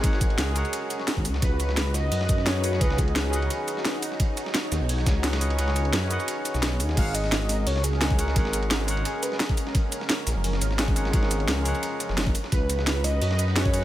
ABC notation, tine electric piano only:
X:1
M:4/4
L:1/8
Q:"Swing 16ths" 1/4=173
K:G#dor
V:1 name="Tine electric piano"
[G,GAcf]3 [G,GAcf]4 z | z6 [CGBdf] [CGBdf] | [CGBdf]3 [CGBdf]4- [CGBdf]- | [CGBdf]6 [CGBdf] [CGBdf] |
[CGBdf]3 [CGBdf]4- [CGBdf] | [G,GAcf]3 z3 [G,GAcf] [G,GAcf] | [G,GAcf]3 [G,GAcf]4- [G,GAcf]- | [G,GAcf]6 [G,GAcf] [G,GAcf] |
[G,GAcf]3 [G,GAcf]4 z | z6 [CGBdf] [CGBdf] |]